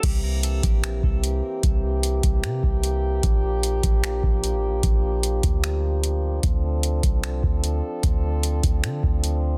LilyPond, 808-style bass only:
\new Staff \with { instrumentName = "808-style bass" } { \clef bass \time 4/4 \key c \mixolydian \tempo 4 = 150 c,4. bes,,4 c,4 r8 | c,4. c,8 c8 c,4. | bes,,4. bes,,4 bes,,8. a,,16. bes,,16. | bes,,4. d,2~ d,8 |
d,4. c,4 d,4 r8 | d,4. d,8 d8 d,4. | }